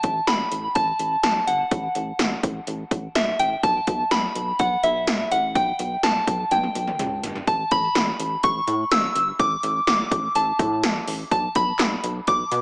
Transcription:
Already playing: synth bell A5
0.03 analog synth bass A1, kick, closed hi-hat
0.27 analog synth bass A1, synth bell B5, snare, closed hi-hat
0.52 analog synth bass A1, closed hi-hat
0.75 analog synth bass A1, synth bell A5, kick, closed hi-hat
0.99 analog synth bass A1, closed hi-hat
1.23 analog synth bass B1, synth bell A5, snare, closed hi-hat
1.47 analog synth bass G1, synth bell F#5, closed hi-hat
1.71 analog synth bass A1, kick, closed hi-hat
1.95 analog synth bass A1, closed hi-hat
2.19 analog synth bass A1, snare, closed hi-hat
2.43 analog synth bass A1, kick, closed hi-hat
2.67 analog synth bass A1, closed hi-hat
2.91 analog synth bass A1, kick, closed hi-hat
3.15 analog synth bass B1, synth bell E5, snare, closed hi-hat
3.39 analog synth bass A1, synth bell G5, closed hi-hat
3.63 analog synth bass B1, synth bell A5, kick, closed hi-hat
3.87 analog synth bass B1, kick, closed hi-hat
4.11 analog synth bass B1, synth bell B5, snare, closed hi-hat
4.35 analog synth bass B1, closed hi-hat
4.59 analog synth bass B1, synth bell F#5, kick, closed hi-hat
4.83 analog synth bass B1, synth bell E5, closed hi-hat
5.07 analog synth bass C#2, snare, closed hi-hat
5.31 analog synth bass A1, synth bell F#5, closed hi-hat
5.55 analog synth bass B1, synth bell G5, kick, closed hi-hat
5.79 analog synth bass B1, closed hi-hat
6.03 analog synth bass B1, synth bell A5, snare, closed hi-hat
6.27 analog synth bass B1, kick, closed hi-hat
6.51 analog synth bass B1, synth bell G5, closed hi-hat, high tom
6.63 high tom
6.75 analog synth bass B1, closed hi-hat
6.87 mid tom
6.99 analog synth bass C#2, closed hi-hat, mid tom
7.23 analog synth bass G1, closed hi-hat, floor tom
7.35 floor tom
7.47 analog synth bass A1, synth bell A5, kick, closed hi-hat
7.71 analog synth bass A1, synth bell B5, kick, closed hi-hat
7.95 analog synth bass A1, snare, closed hi-hat
8.19 analog synth bass A1, closed hi-hat
8.43 analog synth bass A1, synth bell C#6, kick, closed hi-hat
8.68 analog synth bass A2, closed hi-hat
8.91 analog synth bass A1, synth bell E6, snare, closed hi-hat
9.15 analog synth bass G1, closed hi-hat
9.39 analog synth bass A1, synth bell D6, kick, closed hi-hat
9.63 analog synth bass A1, closed hi-hat
9.87 analog synth bass A1, synth bell D6, snare, closed hi-hat
10.11 analog synth bass A1, kick, closed hi-hat
10.35 analog synth bass A1, synth bell A5, closed hi-hat
10.59 analog synth bass A2, kick, closed hi-hat
10.83 analog synth bass A1, snare, closed hi-hat
11.08 analog synth bass A1, open hi-hat
11.31 analog synth bass B1, synth bell A5, kick, closed hi-hat
11.55 analog synth bass B1, synth bell B5, kick, closed hi-hat
11.79 analog synth bass B1, snare, clap, closed hi-hat
12.04 analog synth bass B1, closed hi-hat
12.27 analog synth bass B1, synth bell D6, kick, closed hi-hat
12.52 analog synth bass B2, closed hi-hat

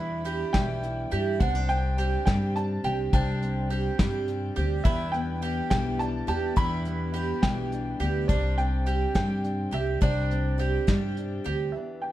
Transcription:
Already playing: twelve-string acoustic guitar E2 B2 E3 G3 D4 E4, upright bass E2, steel-string acoustic guitar E2 E3 D4 E4 G4, mandolin E4, upright piano B5
0.24 twelve-string acoustic guitar E3 G3 D4 E4, mandolin G4, closed hi-hat
0.53 upright bass B1, twelve-string acoustic guitar E2 B2 E3 G3 D4 E4, steel-string acoustic guitar E3, upright piano G5, kick, snare, closed hi-hat
0.83 steel-string acoustic guitar E4, closed hi-hat
1.11 upright bass G2, twelve-string acoustic guitar E3 G3 D4 E4, steel-string acoustic guitar D4, mandolin G4, closed hi-hat
1.40 upright bass C2, twelve-string acoustic guitar C3 G3 C4 D4 G4, steel-string acoustic guitar C3 B3, mandolin D4, upright piano F#5, kick, closed hi-hat
1.55 steel-string acoustic guitar D4
1.69 steel-string acoustic guitar C4, upright piano G5, closed hi-hat
1.98 twelve-string acoustic guitar G3 C4 D4 G4, mandolin G4, closed hi-hat
2.26 upright bass G2, twelve-string acoustic guitar C3 G3 C4 D4 G4, steel-string acoustic guitar G3, upright piano G5, kick, snare, closed hi-hat
2.56 steel-string acoustic guitar D4, upright piano A5, closed hi-hat
2.84 upright bass C2, steel-string acoustic guitar C4, twelve-string acoustic guitar C4 D4 G4, mandolin G4, upright piano G5, closed hi-hat
3.13 upright bass C2, steel-string acoustic guitar C3 D4, twelve-string acoustic guitar C3 G3 C4 D4 G4, mandolin D4, upright piano G5, kick, closed hi-hat
3.42 steel-string acoustic guitar C4, closed hi-hat
3.70 twelve-string acoustic guitar G3 C4 D4 G4, mandolin G4, closed hi-hat
3.98 upright bass G2, twelve-string acoustic guitar C3 G3 C4 D4 G4, steel-string acoustic guitar G3, kick, snare, closed hi-hat
4.28 steel-string acoustic guitar D4, closed hi-hat
4.56 upright bass D2, steel-string acoustic guitar C4, twelve-string acoustic guitar C4 D4 G4, mandolin G4, closed hi-hat
4.84 twelve-string acoustic guitar E2 B2 E3 G3 D4 G4, steel-string acoustic guitar E2 D4, upright bass E2, mandolin E4, upright piano E5, kick, closed hi-hat
5.12 steel-string acoustic guitar B3, upright piano G5, closed hi-hat
5.42 twelve-string acoustic guitar E3 G3 D4 G4, mandolin G4, closed hi-hat
5.70 upright bass B1, twelve-string acoustic guitar E2 B2 E3 G3 D4 G4, steel-string acoustic guitar E3, upright piano G5, kick, snare, closed hi-hat
5.99 steel-string acoustic guitar D4, upright piano A5, closed hi-hat
6.27 upright bass E2, twelve-string acoustic guitar E3 G3 D4 G4, steel-string acoustic guitar B3, mandolin G4, upright piano A5, closed hi-hat
6.56 twelve-string acoustic guitar E2 B2 E3 G3 D4 G4, upright bass E2, steel-string acoustic guitar E2 D4, mandolin E4, upright piano B5, kick, closed hi-hat
6.85 steel-string acoustic guitar B3, closed hi-hat
7.14 twelve-string acoustic guitar E3 G3 D4 G4, mandolin G4, closed hi-hat
7.42 upright bass B1, twelve-string acoustic guitar E2 B2 E3 G3 D4 G4, steel-string acoustic guitar E3, upright piano G5, kick, snare, closed hi-hat
7.72 steel-string acoustic guitar D4, closed hi-hat
8.00 upright bass D2, twelve-string acoustic guitar E3 G3 D4 G4, steel-string acoustic guitar B3, mandolin G4, closed hi-hat
8.28 upright bass C2, twelve-string acoustic guitar C3 G3 C4 D4 G4, steel-string acoustic guitar C3 D4, mandolin D4, upright piano D5, kick, closed hi-hat
8.58 steel-string acoustic guitar C4, upright piano G5, closed hi-hat
8.86 twelve-string acoustic guitar G3 C4 D4 G4, mandolin G4, closed hi-hat
9.15 upright bass G2, twelve-string acoustic guitar C3 G3 C4 D4 G4, steel-string acoustic guitar G3, upright piano G5, kick, snare, closed hi-hat
9.44 steel-string acoustic guitar D4, closed hi-hat
9.71 upright bass C2, steel-string acoustic guitar C4, twelve-string acoustic guitar C4 D4 G4, mandolin G4, upright piano E5, closed hi-hat
10.01 upright bass C2, twelve-string acoustic guitar C3 G3 C4 D4 G4, steel-string acoustic guitar C3 D4, mandolin D4, upright piano D5, kick, closed hi-hat
10.31 steel-string acoustic guitar C4, closed hi-hat
10.58 twelve-string acoustic guitar G3 C4 D4 G4, mandolin G4, closed hi-hat
10.87 upright bass G2, twelve-string acoustic guitar C3 G3 C4 D4 G4, steel-string acoustic guitar G3, kick, snare, closed hi-hat
11.17 steel-string acoustic guitar D4, closed hi-hat
11.44 upright bass D2, steel-string acoustic guitar C4, twelve-string acoustic guitar C4 D4 G4, mandolin G4, closed hi-hat
11.72 steel-string acoustic guitar E2 E3 B3, upright piano E5
11.76 steel-string acoustic guitar D4 G4
12.02 steel-string acoustic guitar G4, upright piano G5

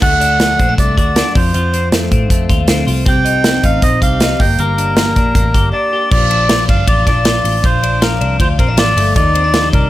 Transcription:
0.02 picked electric bass D2, clean electric guitar A3 F#4, melodica F#5, kick, crash
0.21 clean electric guitar D4, closed hi-hat
0.40 clean electric guitar A3, snare, closed hi-hat
0.59 picked electric bass A#1, clean electric guitar C4, kick, closed hi-hat
0.69 clean electric guitar D4
0.78 picked electric bass C2, clean electric guitar A3, melodica D5, kick, closed hi-hat
0.97 picked electric bass D2, clean electric guitar F#4, melodica D5, kick, closed hi-hat
1.16 clean electric guitar D4, snare, closed hi-hat
1.35 picked electric bass F2, clean electric guitar F3, melodica C5, kick, open hi-hat
1.54 picked electric bass F2, clean electric guitar F3 F4, closed hi-hat
1.73 clean electric guitar C4, closed hi-hat
1.92 clean electric guitar A3, snare, closed hi-hat
2.11 picked electric bass A2, clean electric guitar C4, kick, closed hi-hat
2.30 picked electric bass F2, clean electric guitar A3, kick, closed hi-hat
2.49 picked electric bass D#2, clean electric guitar F4, kick, closed hi-hat
2.68 picked electric bass D2, clean electric guitar C4, snare, closed hi-hat
2.87 picked electric bass C2, clean electric guitar F4, open hi-hat
3.06 picked electric bass C2, clean electric guitar C4 G4, melodica G5, kick, closed hi-hat
3.25 clean electric guitar D#4, closed hi-hat
3.44 clean electric guitar C4, snare, closed hi-hat
3.63 picked electric bass A1, clean electric guitar D#4, melodica F5, kick, closed hi-hat
3.82 picked electric bass A#1, clean electric guitar C4, melodica D#5, kick, closed hi-hat
4.02 picked electric bass C2, clean electric guitar G4, melodica F5, kick, closed hi-hat
4.20 clean electric guitar D#4, snare, closed hi-hat
4.40 picked electric bass G1, clean electric guitar A#3, melodica G5, kick, open hi-hat
4.58 picked electric bass G1, clean electric guitar A#3 G4, melodica A#4, closed hi-hat
4.78 clean electric guitar D4, closed hi-hat
4.97 clean electric guitar A#3, snare, closed hi-hat
5.16 picked electric bass A#1, clean electric guitar D4, kick, closed hi-hat
5.35 picked electric bass A1, clean electric guitar A#3, kick, closed hi-hat
5.54 picked electric bass G1, clean electric guitar G4, kick, closed hi-hat
5.72 clean electric guitar D4, melodica D5
5.93 clean electric guitar G4
6.11 picked electric bass A#1, clean electric guitar F3, melodica D5, kick, crash
6.30 clean electric guitar D4, ride
6.49 clean electric guitar F4, snare, ride
6.69 picked electric bass G1, clean electric guitar D4, melodica F5, kick, ride
6.87 picked electric bass A1, clean electric guitar F4, melodica D5, kick, ride
7.06 picked electric bass A#1, clean electric guitar D4, melodica D5, kick, snare, ride
7.25 clean electric guitar F4, snare, ride
7.44 picked electric bass A1, open hi-hat, ride
7.64 picked electric bass A#1, clean electric guitar F3, melodica C5, kick, hi-hat pedal, ride
7.83 clean electric guitar D4, ride
8.02 clean electric guitar F4, melodica A#4, snare, ride
8.21 picked electric bass C2, clean electric guitar D4, ride
8.40 picked electric bass D2, clean electric guitar F4, melodica C5, kick, ride
8.59 picked electric bass A#1, clean electric guitar C4, melodica A#4, kick, ride
8.68 clean electric guitar D4
8.77 picked electric bass A1, clean electric guitar F4, melodica D5, snare, ride
8.96 picked electric bass G1, clean electric guitar A3, open hi-hat, ride
9.16 picked electric bass D#2, clean electric guitar D#3, melodica D5, kick, hi-hat pedal, ride
9.34 clean electric guitar C4, ride
9.44 clean electric guitar D4
9.53 clean electric guitar F4, snare, ride
9.64 clean electric guitar G4
9.73 picked electric bass C2, clean electric guitar D4, melodica A#4, kick, ride

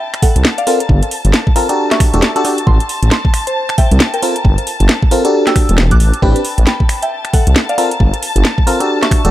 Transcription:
Already playing: violin section A5
0.14 finger snap, closed hi-hat
0.22 synth bell A4 F#5, kick, open hi-hat
0.36 detuned saw bass C2, closed hi-hat
0.45 snare
0.58 synth bell D5 F5, closed hi-hat
0.67 fm electric piano C4 F4 A4 A#4, open hi-hat
0.80 closed hi-hat
0.89 detuned saw bass G1, kick
1.03 closed hi-hat
1.11 open hi-hat
1.25 detuned saw bass G1, closed hi-hat
1.34 snare
1.47 kick
1.56 fm electric piano C4 F4 A4 A#4, open hi-hat
1.69 fm electric piano D4 F#4 G4 A4, closed hi-hat
1.91 synth bell E5 C#6, finger snap, snare, closed hi-hat
2.00 finger snap, kick, open hi-hat
2.14 detuned saw bass E1, fm electric piano D4 F#4 G4 A4, closed hi-hat
2.22 snare
2.36 fm electric piano D4 F#4 G4 A4, synth bell F#5 A5, closed hi-hat
2.45 fm electric piano D4 F#4 G4 A4, open hi-hat
2.58 closed hi-hat
2.67 detuned saw bass A1, synth bell A5 C6, kick
2.80 closed hi-hat
2.89 open hi-hat
3.03 detuned saw bass A1, closed hi-hat
3.11 synth bell A5 C6, snare
3.25 kick
3.34 finger snap, open hi-hat
3.47 synth bell C5 A5, closed hi-hat
3.69 finger snap, closed hi-hat
3.78 synth bell E5 G5, kick, open hi-hat
3.91 detuned saw bass C2, closed hi-hat
4.00 snare
4.14 synth bell A#4 G5, closed hi-hat
4.22 fm electric piano C4 F4 A4 A#4, open hi-hat
4.36 closed hi-hat
4.45 detuned saw bass G1, kick
4.58 closed hi-hat
4.67 open hi-hat
4.80 detuned saw bass G1, closed hi-hat
4.89 snare
5.02 kick
5.11 fm electric piano C4 F4 A4 A#4, open hi-hat
5.25 fm electric piano D4 F#4 G4 A4, closed hi-hat
5.47 synth bell G5 E6, finger snap, snare, closed hi-hat
5.56 finger snap, kick, open hi-hat
5.69 detuned saw bass E1, closed hi-hat
5.78 snare
5.91 detuned saw bass B1, synth bell D6 F#6, kick, closed hi-hat
6.00 detuned saw bass A1, open hi-hat
6.14 closed hi-hat
6.22 detuned saw bass A1, fm electric piano C4 D4 G4 B4, synth bell G5 B5, violin section A5, kick
6.36 closed hi-hat
6.45 open hi-hat
6.58 detuned saw bass A1, closed hi-hat
6.67 synth bell G5 B5, snare
6.80 kick
6.89 finger snap, open hi-hat
7.03 synth bell E5 G5, closed hi-hat
7.25 finger snap, closed hi-hat
7.34 synth bell A4 F#5, kick, open hi-hat
7.47 detuned saw bass C2, closed hi-hat
7.56 snare
7.69 synth bell D5 F5, closed hi-hat
7.78 fm electric piano C4 F4 A4 A#4, open hi-hat
7.91 closed hi-hat
8.00 detuned saw bass G1, kick
8.14 closed hi-hat
8.23 open hi-hat
8.36 detuned saw bass G1, closed hi-hat
8.45 snare
8.58 kick
8.67 fm electric piano C4 F4 A4 A#4, open hi-hat
8.80 fm electric piano D4 F#4 G4 A4, closed hi-hat
9.02 synth bell E5 C#6, finger snap, snare, closed hi-hat
9.11 finger snap, kick, open hi-hat
9.25 detuned saw bass E1, fm electric piano D4 F#4 G4 A4, closed hi-hat

